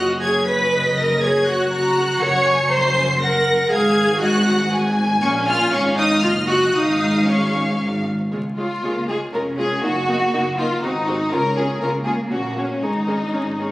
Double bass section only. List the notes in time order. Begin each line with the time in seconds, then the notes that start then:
Already playing: F#1
2.23 F#1
3.72 G#1
5.22 A#1
5.73 G#1
6.23 F#1
6.76 G#1
7.80 G#1
8.32 C#2
8.83 C#2
9.34 F1
9.84 F#1
10.34 F#1
10.83 G#1
11.34 C#2
11.83 C#2
12.32 A#1
12.83 G#1
13.34 G#1